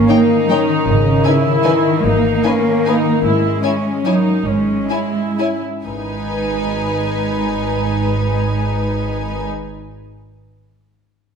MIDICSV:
0, 0, Header, 1, 7, 480
1, 0, Start_track
1, 0, Key_signature, 5, "minor"
1, 0, Tempo, 383877
1, 1090, Time_signature, 3, 2, 24, 8
1, 1560, Tempo, 397088
1, 3960, Tempo, 412088
1, 5400, Tempo, 430108
1, 5880, Tempo, 473934
1, 9240, Tempo, 437637
1, 12680, End_track
2, 0, Start_track
2, 0, Title_t, "Violin section"
2, 0, Program_c, 0, 48
2, 121, Note_on_c, 0, 79, 39
2, 221, Note_off_c, 0, 79, 0
2, 618, Note_on_c, 0, 79, 37
2, 718, Note_off_c, 0, 79, 0
2, 1550, Note_on_c, 0, 80, 38
2, 1647, Note_off_c, 0, 80, 0
2, 2023, Note_on_c, 0, 80, 37
2, 2120, Note_off_c, 0, 80, 0
2, 2999, Note_on_c, 0, 80, 39
2, 3096, Note_off_c, 0, 80, 0
2, 3506, Note_on_c, 0, 80, 34
2, 3603, Note_off_c, 0, 80, 0
2, 4425, Note_on_c, 0, 80, 32
2, 4518, Note_off_c, 0, 80, 0
2, 4915, Note_on_c, 0, 80, 31
2, 5008, Note_off_c, 0, 80, 0
2, 5876, Note_on_c, 0, 80, 26
2, 5957, Note_off_c, 0, 80, 0
2, 6377, Note_on_c, 0, 80, 22
2, 6458, Note_off_c, 0, 80, 0
2, 6856, Note_on_c, 0, 80, 32
2, 10576, Note_off_c, 0, 80, 0
2, 12680, End_track
3, 0, Start_track
3, 0, Title_t, "Violin section"
3, 0, Program_c, 1, 48
3, 107, Note_on_c, 1, 73, 40
3, 109, Note_on_c, 1, 63, 39
3, 207, Note_off_c, 1, 73, 0
3, 209, Note_off_c, 1, 63, 0
3, 621, Note_on_c, 1, 63, 39
3, 634, Note_on_c, 1, 73, 41
3, 721, Note_off_c, 1, 63, 0
3, 734, Note_off_c, 1, 73, 0
3, 1581, Note_on_c, 1, 71, 42
3, 1586, Note_on_c, 1, 63, 38
3, 1678, Note_off_c, 1, 71, 0
3, 1683, Note_off_c, 1, 63, 0
3, 2041, Note_on_c, 1, 71, 39
3, 2047, Note_on_c, 1, 63, 38
3, 2138, Note_off_c, 1, 71, 0
3, 2143, Note_off_c, 1, 63, 0
3, 3000, Note_on_c, 1, 71, 37
3, 3007, Note_on_c, 1, 63, 38
3, 3097, Note_off_c, 1, 71, 0
3, 3104, Note_off_c, 1, 63, 0
3, 3518, Note_on_c, 1, 63, 34
3, 3523, Note_on_c, 1, 71, 37
3, 3615, Note_off_c, 1, 63, 0
3, 3620, Note_off_c, 1, 71, 0
3, 4436, Note_on_c, 1, 73, 36
3, 4441, Note_on_c, 1, 64, 32
3, 4529, Note_off_c, 1, 73, 0
3, 4534, Note_off_c, 1, 64, 0
3, 4913, Note_on_c, 1, 73, 31
3, 4917, Note_on_c, 1, 64, 32
3, 5007, Note_off_c, 1, 73, 0
3, 5011, Note_off_c, 1, 64, 0
3, 5890, Note_on_c, 1, 73, 27
3, 5891, Note_on_c, 1, 64, 27
3, 5971, Note_off_c, 1, 73, 0
3, 5972, Note_off_c, 1, 64, 0
3, 6377, Note_on_c, 1, 64, 26
3, 6377, Note_on_c, 1, 73, 24
3, 6458, Note_off_c, 1, 64, 0
3, 6458, Note_off_c, 1, 73, 0
3, 6853, Note_on_c, 1, 71, 34
3, 10574, Note_off_c, 1, 71, 0
3, 12680, End_track
4, 0, Start_track
4, 0, Title_t, "Viola section"
4, 0, Program_c, 2, 48
4, 129, Note_on_c, 2, 63, 49
4, 1563, Note_off_c, 2, 63, 0
4, 1571, Note_on_c, 2, 64, 52
4, 2535, Note_off_c, 2, 64, 0
4, 2538, Note_on_c, 2, 63, 44
4, 3001, Note_off_c, 2, 63, 0
4, 3021, Note_on_c, 2, 61, 42
4, 3504, Note_off_c, 2, 61, 0
4, 3510, Note_on_c, 2, 63, 42
4, 3966, Note_off_c, 2, 63, 0
4, 3975, Note_on_c, 2, 64, 41
4, 4423, Note_off_c, 2, 64, 0
4, 4438, Note_on_c, 2, 61, 39
4, 4917, Note_off_c, 2, 61, 0
4, 4935, Note_on_c, 2, 63, 38
4, 5405, Note_off_c, 2, 63, 0
4, 5411, Note_on_c, 2, 61, 34
4, 5883, Note_on_c, 2, 64, 31
4, 5884, Note_off_c, 2, 61, 0
4, 6349, Note_off_c, 2, 64, 0
4, 6362, Note_on_c, 2, 64, 28
4, 6604, Note_off_c, 2, 64, 0
4, 6835, Note_on_c, 2, 63, 30
4, 10564, Note_off_c, 2, 63, 0
4, 12680, End_track
5, 0, Start_track
5, 0, Title_t, "Cello section"
5, 0, Program_c, 3, 48
5, 0, Note_on_c, 3, 58, 62
5, 608, Note_off_c, 3, 58, 0
5, 624, Note_on_c, 3, 51, 57
5, 1085, Note_on_c, 3, 49, 62
5, 1090, Note_off_c, 3, 51, 0
5, 2037, Note_off_c, 3, 49, 0
5, 2039, Note_on_c, 3, 51, 62
5, 2530, Note_off_c, 3, 51, 0
5, 2533, Note_on_c, 3, 58, 75
5, 3956, Note_on_c, 3, 56, 57
5, 3961, Note_off_c, 3, 58, 0
5, 4918, Note_off_c, 3, 56, 0
5, 4918, Note_on_c, 3, 54, 48
5, 5388, Note_off_c, 3, 54, 0
5, 5399, Note_on_c, 3, 56, 43
5, 6343, Note_off_c, 3, 56, 0
5, 6845, Note_on_c, 3, 56, 35
5, 10570, Note_off_c, 3, 56, 0
5, 12680, End_track
6, 0, Start_track
6, 0, Title_t, "Harp"
6, 0, Program_c, 4, 46
6, 0, Note_on_c, 4, 44, 44
6, 0, Note_on_c, 4, 61, 34
6, 126, Note_on_c, 4, 51, 38
6, 373, Note_off_c, 4, 61, 0
6, 388, Note_on_c, 4, 61, 32
6, 625, Note_on_c, 4, 63, 32
6, 847, Note_off_c, 4, 51, 0
6, 862, Note_on_c, 4, 51, 38
6, 1024, Note_off_c, 4, 63, 0
6, 1076, Note_off_c, 4, 44, 0
6, 1091, Note_on_c, 4, 44, 43
6, 1107, Note_off_c, 4, 51, 0
6, 1114, Note_off_c, 4, 61, 0
6, 1324, Note_on_c, 4, 51, 33
6, 1556, Note_on_c, 4, 59, 36
6, 1794, Note_off_c, 4, 51, 0
6, 1809, Note_on_c, 4, 51, 35
6, 2047, Note_on_c, 4, 52, 30
6, 2288, Note_off_c, 4, 51, 0
6, 2302, Note_on_c, 4, 51, 37
6, 2463, Note_off_c, 4, 52, 0
6, 2519, Note_off_c, 4, 44, 0
6, 2533, Note_on_c, 4, 44, 44
6, 2762, Note_off_c, 4, 59, 0
6, 2776, Note_on_c, 4, 59, 33
6, 2995, Note_off_c, 4, 51, 0
6, 3009, Note_on_c, 4, 51, 34
6, 3245, Note_off_c, 4, 59, 0
6, 3259, Note_on_c, 4, 59, 33
6, 3495, Note_on_c, 4, 61, 28
6, 3714, Note_off_c, 4, 51, 0
6, 3728, Note_on_c, 4, 51, 33
6, 3891, Note_off_c, 4, 61, 0
6, 3935, Note_off_c, 4, 44, 0
6, 3950, Note_on_c, 4, 44, 40
6, 3974, Note_off_c, 4, 51, 0
6, 3979, Note_off_c, 4, 59, 0
6, 4185, Note_on_c, 4, 56, 27
6, 4424, Note_on_c, 4, 61, 30
6, 4661, Note_off_c, 4, 56, 0
6, 4675, Note_on_c, 4, 56, 29
6, 4928, Note_on_c, 4, 58, 26
6, 5158, Note_off_c, 4, 56, 0
6, 5172, Note_on_c, 4, 56, 26
6, 5333, Note_off_c, 4, 58, 0
6, 5391, Note_off_c, 4, 44, 0
6, 5405, Note_on_c, 4, 44, 34
6, 5626, Note_off_c, 4, 61, 0
6, 5640, Note_on_c, 4, 61, 24
6, 5859, Note_off_c, 4, 56, 0
6, 5872, Note_on_c, 4, 56, 25
6, 6103, Note_off_c, 4, 61, 0
6, 6115, Note_on_c, 4, 61, 21
6, 6359, Note_on_c, 4, 63, 19
6, 6593, Note_off_c, 4, 56, 0
6, 6605, Note_on_c, 4, 56, 21
6, 6775, Note_off_c, 4, 63, 0
6, 6828, Note_off_c, 4, 44, 0
6, 6840, Note_on_c, 4, 44, 26
6, 6860, Note_off_c, 4, 61, 0
6, 6899, Note_off_c, 4, 56, 0
6, 6911, Note_on_c, 4, 56, 26
6, 6983, Note_on_c, 4, 59, 26
6, 7052, Note_on_c, 4, 63, 25
6, 7121, Note_on_c, 4, 68, 24
6, 7198, Note_on_c, 4, 75, 27
6, 11335, Note_off_c, 4, 44, 0
6, 11373, Note_off_c, 4, 56, 0
6, 11412, Note_off_c, 4, 59, 0
6, 11449, Note_off_c, 4, 63, 0
6, 11487, Note_off_c, 4, 68, 0
6, 11528, Note_off_c, 4, 75, 0
6, 12680, End_track
7, 0, Start_track
7, 0, Title_t, "Double bass section"
7, 0, Program_c, 5, 48
7, 1088, Note_on_c, 5, 32, 54
7, 1457, Note_off_c, 5, 32, 0
7, 2519, Note_on_c, 5, 32, 54
7, 2898, Note_off_c, 5, 32, 0
7, 3963, Note_on_c, 5, 32, 48
7, 4325, Note_off_c, 5, 32, 0
7, 5396, Note_on_c, 5, 32, 42
7, 5771, Note_off_c, 5, 32, 0
7, 6837, Note_on_c, 5, 32, 35
7, 10565, Note_off_c, 5, 32, 0
7, 12680, End_track
0, 0, End_of_file